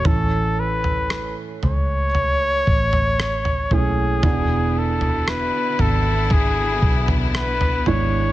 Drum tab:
SD |----r-------r---|----r-------r---|
FT |o--o--o-o--o-oo-|o--o--o-o--o-oo-|
BD |o---------o---o-|o-------o-o-----|